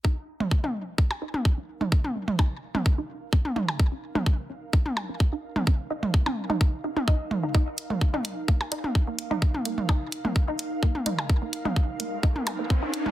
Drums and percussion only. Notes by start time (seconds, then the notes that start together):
0.05 kick
0.40 mid tom
0.51 kick
0.64 high tom
0.98 kick
1.11 percussion blips
1.34 high tom
1.45 kick
1.81 mid tom
1.92 kick
2.04 high tom
2.28 mid tom
2.39 kick, percussion blips
2.75 mid tom, high tom
2.86 kick
3.33 kick
3.45 high tom
3.56 mid tom
3.68 percussion blips
3.80 kick
4.15 mid tom, high tom
4.26 kick
4.73 kick
4.86 high tom
4.97 percussion blips
5.20 kick
5.56 mid tom, high tom
5.67 kick
6.03 mid tom
6.14 kick
6.26 high tom, percussion blips
6.50 mid tom
6.61 kick
6.97 high tom
7.08 kick
7.31 mid tom
7.55 kick
7.78 closed hi-hat
7.90 mid tom
8.01 kick
8.14 high tom
8.25 closed hi-hat
8.48 kick
8.61 percussion blips
8.72 closed hi-hat
8.84 high tom
8.95 kick
9.19 closed hi-hat
9.31 mid tom
9.42 kick
9.54 high tom
9.65 closed hi-hat
9.78 mid tom
9.89 kick, percussion blips
10.12 closed hi-hat
10.25 mid tom, high tom
10.36 kick
10.59 closed hi-hat
10.83 kick
10.95 high tom
11.06 closed hi-hat, mid tom
11.19 percussion blips
11.30 kick
11.53 closed hi-hat
11.65 mid tom, high tom
11.76 kick
12.00 closed hi-hat
12.23 kick
12.36 high tom
12.47 closed hi-hat, percussion blips
12.70 kick
12.94 closed hi-hat
13.06 mid tom, high tom